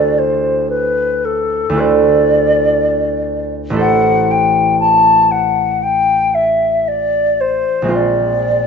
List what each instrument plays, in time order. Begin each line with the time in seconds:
Already playing: harp D2 A3 E4 F#4 C5, flute D5
0.18 flute C5
0.70 flute B4
1.24 flute A4
1.69 harp D2 A3 E4
1.76 harp F#4 C5, flute D5
3.70 harp A1 A3 E4
3.76 harp A4 C5, flute F#5
4.31 flute G5
4.80 flute A5
5.31 flute F#5
5.83 flute G5
6.34 flute E5
6.88 flute D5
7.40 flute C5
7.82 harp A#1 G#3 C4
7.88 harp F4 C5
7.94 flute D5